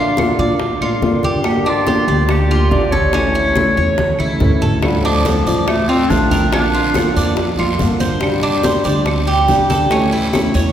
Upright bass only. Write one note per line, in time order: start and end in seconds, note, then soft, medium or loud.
0.00 0.33 A#1 medium
0.39 0.78 A#2 medium
0.81 1.01 A2 medium
1.02 2.02 G2 medium
2.08 2.67 D2 medium
2.72 3.71 A1 medium
3.77 4.17 E2 medium
4.19 4.39 E2 medium
4.41 5.41 D2 medium
5.46 6.06 A1 medium
6.10 7.10 A#1 medium
7.16 7.56 F2 medium
7.59 7.79 F2 medium
7.80 8.80 G2 medium
8.85 9.45 D2 medium
9.49 10.49 A1 medium
10.55 10.72 E2 medium